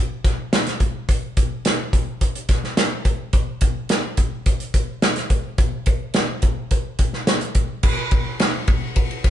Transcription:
0.25 kick, snare, closed hi-hat
0.53 snare, closed hi-hat
0.67 snare, closed hi-hat
0.80 kick, closed hi-hat
1.09 kick, closed hi-hat
1.37 kick, closed hi-hat
1.65 snare, closed hi-hat
1.93 kick, closed hi-hat
2.21 kick, closed hi-hat
2.35 closed hi-hat
2.49 kick, snare, closed hi-hat
2.64 snare
2.77 snare, closed hi-hat
3.05 kick, closed hi-hat
3.33 kick, closed hi-hat
3.61 kick, closed hi-hat
3.89 snare, closed hi-hat
4.17 kick, closed hi-hat
4.46 kick, closed hi-hat
4.60 closed hi-hat
4.74 kick, closed hi-hat
5.02 snare, closed hi-hat
5.16 snare, closed hi-hat
5.30 kick, closed hi-hat
5.58 kick, closed hi-hat
5.86 kick, closed hi-hat
6.14 snare, closed hi-hat
6.42 kick, closed hi-hat
6.71 kick, closed hi-hat
6.99 kick, closed hi-hat
7.13 snare
7.27 snare, closed hi-hat
7.41 closed hi-hat
7.55 kick, closed hi-hat
7.83 kick, crash
8.11 kick, ride
8.40 snare, ride
8.68 kick, ride
8.96 kick, ride
9.11 ride
9.24 kick, snare, ride

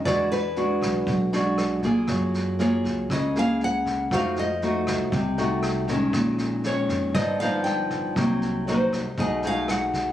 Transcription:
0.05 E2 E3 G#3 D4 F#4 D5, kick, cross-stick, snare
0.32 B4, snare
0.56 G#3 D4 F#4, snare
0.81 B1, kick, cross-stick, snare
1.07 B1 B2, kick, snare
1.33 G#3 D4 F#4, snare
1.58 cross-stick, snare
1.83 A#3 F4 G#4, kick, snare
2.07 F#2 F#3, kick, cross-stick, snare
2.34 snare
2.59 A#3 F4 G#4 C#5, snare
2.85 C#2, kick, snare
3.10 C#2 C#3 D#5, kick, cross-stick, snare
3.36 A#3 G#4 F5, snare
3.61 F#5, snare
3.86 kick, snare
4.11 F2 F3 A3 D#4 F#4 F5, kick, cross-stick, snare
4.36 D#5, snare
4.62 A3 D#4 F#4, snare
4.87 C2, kick, cross-stick, snare
5.12 C2 C3, kick, snare
5.38 A3 D#4 F#4, snare
5.62 cross-stick, snare
5.88 D#3 G#3 C#4, kick, snare
6.13 A#1 A#2, kick, cross-stick, snare
6.38 snare
6.63 D#3 G#3 C#4 C#5, snare
6.89 F2, kick, snare
7.15 G1 G2 F3 B3 D#4 D#5, kick, cross-stick, snare
7.40 F3 B3 D#4 F5, snare
7.64 G5, snare
7.90 kick, snare
8.16 C2 C3 F#3 A#3 D#4, kick, cross-stick, snare
8.42 snare
8.67 F#3 A#3 D#4 C5, snare
8.92 C2, kick, cross-stick, snare
9.17 B1 B2 A3 D#4 G#4 D#5, kick, snare
9.42 A3 D#4 G#4, snare
9.47 F5
9.68 F#5, cross-stick, snare
9.94 kick, snare

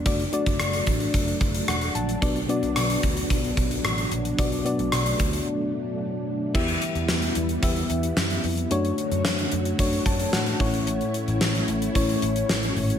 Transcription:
Already playing: D4
0.05 F#1 F#3 A3 D4 F#4 D5, kick, closed hi-hat
0.19 closed hi-hat
0.32 A3 D4 F#4 D5, closed hi-hat
0.46 F#1, kick, closed hi-hat
0.60 F#1, cross-stick, closed hi-hat
0.73 closed hi-hat
0.87 A1, kick, closed hi-hat
1.00 closed hi-hat
1.14 F#1, kick, closed hi-hat
1.28 closed hi-hat
1.41 F#1, kick, closed hi-hat
1.54 closed hi-hat
1.68 E1 F#5, cross-stick, closed hi-hat
1.81 closed hi-hat
1.95 A#1 A5, closed hi-hat
2.09 closed hi-hat
2.21 B1 B2 B3 D4 F#4 D5, kick, closed hi-hat
2.36 closed hi-hat
2.48 B3 D4 F#4 D5, closed hi-hat
2.63 B1, closed hi-hat
2.76 B1, cross-stick, closed hi-hat
2.90 closed hi-hat
3.03 D2, kick, closed hi-hat
3.17 closed hi-hat
3.30 B1, kick, closed hi-hat
3.44 closed hi-hat
3.57 B1, kick, closed hi-hat
3.71 closed hi-hat
3.84 A1, cross-stick, closed hi-hat
3.98 closed hi-hat
4.11 A#1, closed hi-hat
4.25 closed hi-hat
4.38 B1 B2 A3 B3 D4 F#4 D5, kick, closed hi-hat
4.52 closed hi-hat
4.65 B3 D4 F#4 D5, closed hi-hat
4.79 B1, closed hi-hat
4.92 B1, cross-stick, closed hi-hat
5.06 closed hi-hat
5.19 D2, kick, closed hi-hat
5.33 closed hi-hat
6.54 E2 E3 G3 B3 E4 G4 E5, kick, crash
6.68 closed hi-hat
6.82 closed hi-hat
6.95 E2, closed hi-hat
7.08 E2, snare
7.22 closed hi-hat
7.35 E2, closed hi-hat
7.49 closed hi-hat
7.62 E2 B3 E4 G4 E5, kick, closed hi-hat
7.76 closed hi-hat
7.90 E2, closed hi-hat
8.03 closed hi-hat
8.17 F#2, snare
8.30 closed hi-hat
8.44 F2, open hi-hat
8.57 closed hi-hat
8.70 F#2 D3 F#3 A3 D4 F#4 C#5, closed hi-hat
8.85 closed hi-hat
8.98 closed hi-hat
9.12 F#2, closed hi-hat
9.25 F#2, snare
9.39 closed hi-hat
9.52 F#2, closed hi-hat
9.65 closed hi-hat
9.79 F#2 A3 D4 F#4 C#5, kick, closed hi-hat
9.93 closed hi-hat
10.06 F#2 A5, kick, closed hi-hat
10.20 closed hi-hat
10.33 A2 F#5, snare
10.46 closed hi-hat
10.60 A1 A2 A3 C#4 E4 C#5, kick, open hi-hat
10.74 closed hi-hat
10.87 closed hi-hat
11.01 closed hi-hat
11.14 closed hi-hat
11.28 A1, closed hi-hat
11.41 snare
11.55 closed hi-hat
11.68 A1, closed hi-hat
11.82 closed hi-hat
11.95 A1 A3 C#4 E4 C#5, kick, closed hi-hat
12.09 closed hi-hat
12.22 A1, closed hi-hat
12.36 closed hi-hat
12.49 A1, snare
12.63 closed hi-hat
12.76 G#1 A2 F#4, open hi-hat
12.90 closed hi-hat

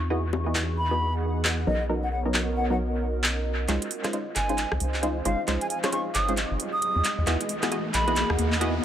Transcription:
Already playing: E2 E3 B3 D#4 F#4 G#4 C#6
0.10 B3 E4 F#4 G#4 D#5
0.33 high bongo
0.43 B3 E4 F#4 G#4 D#5
0.55 B3 E4 F#4 G#4 D#5, clap
0.70 D#5 F#5
0.78 B5
0.91 B3 E4 F#4 G#4 D#5
1.45 B3 E4 F#4 G#4 D#5, clap
1.67 B1 F#3 B3 C#4 D#4 F#4 A#4 D#5
1.80 A#4 C#5
1.89 F#3 B3 C#4 D#4 A#4
2.03 F#5
2.12 F#5
2.25 F#3 B3 C#4 D#4 A#4
2.34 F#3 B3 C#4 D#4 A#4, clap
2.57 F#5
2.70 F#3 B3 C#4 D#4 A#4 F#5
3.24 clap
3.68 C#2 G#3 C4 C#4 D#4 F4 G#4 C5, clap, closed hi-hat, riser
3.82 closed hi-hat
3.91 open hi-hat
4.04 G#3 C#4 D#4 F4 C5, cross-stick, clap, closed hi-hat
4.13 G#3 C#4 D#4 F4 C5, closed hi-hat
4.34 G#1 C5 G#5, clap, open hi-hat
4.49 G#3 C#4 D#4 F4 C5, closed hi-hat
4.58 clap, closed hi-hat
4.65 F5
4.72 C#2, cross-stick
4.80 C#2, open hi-hat
4.94 clap
5.03 G#3 C#4 D#4 F4 C5, closed hi-hat
5.25 G#1 G#3 C#4 D#4 F4 C5 F5, open hi-hat
5.48 C#2 G#3 C#4 D#4 F4 C5, clap, closed hi-hat
5.61 G#5, closed hi-hat
5.70 G#5, open hi-hat
5.83 G#3 C#4 D#4 F4 C5 C#6, cross-stick, clap, closed hi-hat
5.92 G#3 C#4 D#4 F4 C5 C#6, closed hi-hat
6.14 G#1 D#6, clap, open hi-hat
6.29 G#3 C#4 D#4 F4 C5, closed hi-hat
6.37 clap, closed hi-hat
6.51 G#1
6.60 open hi-hat
6.73 D#6
6.82 closed hi-hat
6.96 F2
7.04 E3 B3 D#4 F#4, clap, open hi-hat
7.18 E2
7.27 E2 B3 E4 F#4 G#4 D#5, clap, closed hi-hat
7.41 closed hi-hat
7.49 open hi-hat
7.54 G#4
7.63 B3 E4 F#4 G#4 D#5, cross-stick, clap, closed hi-hat
7.72 B3 E4 F#4 G#4 D#5, closed hi-hat
7.87 F#5
7.94 B1 B5, clap, open hi-hat
8.07 B3 E4 F#4 G#4 D#5, closed hi-hat
8.16 clap, closed hi-hat
8.30 E2, cross-stick
8.39 E2, open hi-hat
8.52 clap
8.61 B3 E4 F#4 G#4 D#5, closed hi-hat

